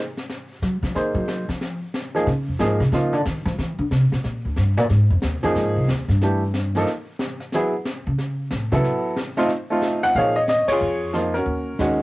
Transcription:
0.17 snare
0.30 brush sweep, snare
0.62 F#3, snare
0.83 F3, snare
0.95 D#3 A#3 D#4 G#4 C5, brush sweep, snare
1.15 F#3
1.28 snare
1.49 F3, snare
1.61 brush sweep, snare
1.94 snare
2.15 F3 A#3 D#4 G#4, snare
2.27 C#3, brush sweep, snare
2.48 F2
2.59 G#2 F3 A#3 D#4 G#4, snare
2.80 C3, snare
2.92 C#3 F3 A#3 D#4 F4, brush sweep, snare
3.13 D3
3.26 D#3, snare
3.45 F3, snare
3.58 E3, brush sweep, snare
3.79 D3
3.91 C3, snare
4.12 B2, snare
4.24 A#2, brush sweep, snare
4.45 D2
4.56 G2, snare
4.77 A#2, snare
4.90 G#2, brush sweep, snare
5.10 F2
5.22 D#2, snare
5.43 F#2 F3 A#3 D#4 G#4, snare
5.55 G#2, brush sweep, snare
5.76 C2
5.88 D#2, snare
6.08 G2, snare
6.21 E3 A3 D4 G4, brush sweep, snare
6.54 snare
6.75 F3 A#3 D#4 A4, snare
6.87 brush sweep, snare
7.19 snare
7.40 snare
7.52 F#3 B3 E4 G#4, brush sweep, snare
7.85 snare
8.07 C#3
8.18 brush sweep, snare
8.51 A2, snare
8.72 C#3 F#3 B3 E4 A4, snare
8.84 brush sweep, snare
9.16 snare
9.37 A3 C4 D#4 F4, snare
9.49 brush sweep, snare
9.70 A3 C4 D#4 F4
9.82 snare
10.03 F#5, snare
10.14 A#2 F3 A#3 D#4 G#4 C#5 F5, brush sweep
10.36 D#5
10.48 D#5, snare, hi-hat pedal
10.68 C#5, muted upright bass stroke, snare, ride
10.72 F4 G#4
10.81 F2, brush sweep
11.13 F3 A#3 D#4 F4, snare, hi-hat pedal
11.34 C#4 F#4 A#4, snare
11.46 D#2, brush sweep
11.79 D#2 D#3 G#3 C#4 F#4, snare, hi-hat pedal

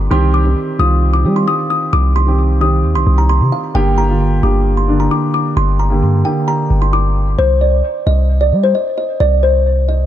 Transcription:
Already playing: D3 A#3 G4
0.10 C2 D#3 C4 G4 C6
0.34 D6
0.45 D#3 C4 G4
0.79 C2 D#3 C4 F4 D#6
1.13 D6
1.24 D#3 G3 C4 G4
1.36 C6
1.48 D#6
1.70 D#6
1.93 C2 D6
2.16 C6
2.27 D#3 C4 G4
2.60 D#3 C4 G4 D#6
2.84 D#2
2.95 C2 C6
3.07 C2
3.18 A#5
3.29 C6
3.41 C3
3.52 F5
3.74 G1 D3 A#3 G4 G5
3.98 A#5
4.08 D3 A#3 F4
4.43 G1 D3 A#3 G4 D6
4.77 C6
4.88 D3 A#3 D4
5.00 A#5
5.11 D6
5.34 D6
5.57 G1 C6
5.79 A#5
5.90 D3 A#3 G4
6.02 G2
6.24 D3 A#3 G4 G5
6.48 A#5
6.70 G1
6.82 C6
6.93 D6
7.39 C2 C5
7.61 D5
8.07 C2 D#5
8.41 D5
8.52 G3
8.63 C5
8.75 D#5
8.98 D#5
9.20 C2 D5
9.43 C5
9.89 D#5

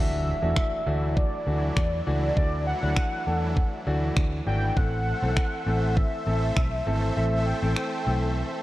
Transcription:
Already playing: D2 E3 F#3 A3 D4 E4 F#4 E5, impact
0.42 E2 E3 A3 D4 F#4
0.57 finger snap, kick
0.86 D2 E3 A3 D4 F#4
1.17 D5, kick
1.47 D2 E3 A3 D4 F#4
1.77 E2, finger snap, kick
2.06 C#2 E3 A3 D4 F#4
2.36 D2 E3 A3 D4 F#4 D5, kick
2.67 F#5
2.82 D2 E3 A3 D4 F#4
2.97 finger snap, kick
3.27 E2 E3 A3 D4 A4
3.57 kick
3.87 D2 E3 A3 D4 F#4
4.17 D2, finger snap, kick
4.46 G#1 E3 A3 D4 F#4 G5
4.76 A1 E3 A3 C4 A4 C5 E5 F#5, kick
5.22 B1 E3 A3 C4 A4
5.37 finger snap, kick
5.66 A1 E3 A3 C4 A4
5.97 E5, kick
6.27 A1 E3 A3 C4 A4
6.57 B1, finger snap, kick
6.87 G#1 E3 A3 C4 A4
7.17 A1 E3 A3 C4 A4 E5
7.46 G5
7.62 A1 E3 A3 C4 A4
7.77 finger snap
8.06 B1 E3 A3 C4 A4

